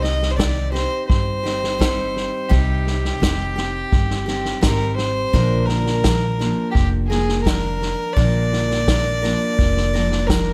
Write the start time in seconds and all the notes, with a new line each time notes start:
Already playing: C2 C3 G3 C4 D#4 G4
0.03 D#5, snare
0.23 snare
0.31 C5
0.37 G3 C4 D#4 G4 D5, kick, snare, hi-hat pedal
0.72 C4 D#4 G4 C5, snare
1.08 G1 C5, kick, snare
1.43 C4 D#4 G4, snare
1.64 snare
1.79 G3 C4 D#4 G4, kick, snare, hi-hat pedal
2.17 snare
2.49 C2 C3 G3 C4 D#4 G4, kick, snare
2.87 snare
3.05 snare
3.20 F1 G3 C4 D#4 G4, kick, snare, hi-hat pedal
3.56 C4 D#4 G4, snare
3.92 G1, kick, snare
4.10 snare
4.26 C4 D#4 G4, snare
4.45 snare
4.61 G#1 G3 C4 D#4 G4 A#4, kick, snare, hi-hat pedal
4.96 C5, snare
5.33 A#1 A#2 D3 F3 A#3 D4 A#4, kick, snare
5.66 A#4, snare
5.87 snare
6.04 F3 A#3 D4 A#4, kick, snare, hi-hat pedal
6.39 F3 A#3 D4 A#4, snare
6.71 G4
6.75 F1, kick, snare
7.07 D4 G#4 A#4
7.11 F3 A#3, snare
7.29 snare
7.42 F3 A#4
7.46 A#3 D4 A#4, kick, snare, hi-hat pedal
7.82 snare
8.13 A#1 A#2 D3 F3 A#3 D4 D5, kick, snare
8.18 A#4
8.53 snare
8.71 snare
8.87 F3 A#3 D4 A#4, kick, snare, hi-hat pedal
9.22 F3 A#3 D4 A#4, snare
9.59 F1, kick, snare
9.77 snare
9.93 F3 A#3 D4 A#4, snare
10.12 snare
10.27 F3 A#3 D4 A#4, kick, snare, hi-hat pedal
10.32 A#4